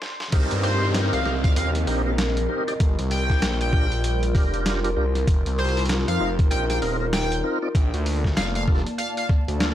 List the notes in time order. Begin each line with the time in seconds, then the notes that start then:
0.02 snare
0.20 snare
0.32 C2 C4 D#4 G4 A#4 D#5, kick, closed hi-hat, crash, downlifter
0.51 G2, closed hi-hat
0.63 C5, open hi-hat
0.94 snare, closed hi-hat
1.13 C2 F5, closed hi-hat
1.25 C2 C4 D#4 G4 A#4, snare
1.44 F5, kick, closed hi-hat
1.56 D#2 C4 D#4 G4 A#4 F5, closed hi-hat
1.75 snare, closed hi-hat
1.87 A#1 C4 D#4 G4 A#4, open hi-hat
2.06 C4 D#4 G4 A#4
2.18 snare, closed hi-hat
2.37 closed hi-hat
2.49 C4 D#4 G4 A#4
2.67 C4 D#4 G4 D5, closed hi-hat
2.80 G1 G3 F4 A#4, kick, closed hi-hat
2.99 C2, closed hi-hat
3.11 G5, open hi-hat
3.30 kick, snare
3.42 A#1, snare, closed hi-hat
3.61 G5, closed hi-hat
3.72 D4 F4 G4 A#4, kick
3.92 closed hi-hat
4.04 closed hi-hat
4.23 closed hi-hat
4.35 F1 D4 F4 G4 A#4, kick, snare, open hi-hat
4.54 closed hi-hat
4.66 snare, closed hi-hat
4.84 D4 F4 G4 A#4, closed hi-hat
4.96 C2 D4 F4 G4 A#4
5.15 snare, closed hi-hat
5.27 F1 D#4 A#4, kick, closed hi-hat
5.46 C2, closed hi-hat
5.58 C5, open hi-hat
5.64 open hi-hat
5.69 open hi-hat
5.77 open hi-hat
5.79 open hi-hat
5.86 snare, closed hi-hat, open hi-hat
6.08 F2 F5, closed hi-hat
6.20 F1 C4 D#4 F4 A#4
6.39 kick, closed hi-hat
6.51 A#1 C4 D#4 F4 A#4 G5, closed hi-hat
6.70 G5, snare, closed hi-hat
6.82 D#1 C4 D#4 F4 A#4, open hi-hat
7.00 C4 D#4 F4 A#4
7.13 G5, snare, closed hi-hat
7.32 closed hi-hat
7.44 C4 D#4 F4 A#4
7.62 C4 D#4 F4 D5
7.75 A#1 A#3 D5 A5, kick, closed hi-hat
7.94 D2, closed hi-hat
8.06 open hi-hat
8.24 kick, snare
8.36 F1 F5, snare, closed hi-hat
8.55 F5, closed hi-hat
8.67 A#3 D4 F4 A4, kick, snare
8.74 snare
8.78 snare
8.87 closed hi-hat
8.98 F5, closed hi-hat
9.17 F5, closed hi-hat
9.29 kick, snare
9.48 D2, closed hi-hat
9.60 A#3 D4 F4 A4, snare, closed hi-hat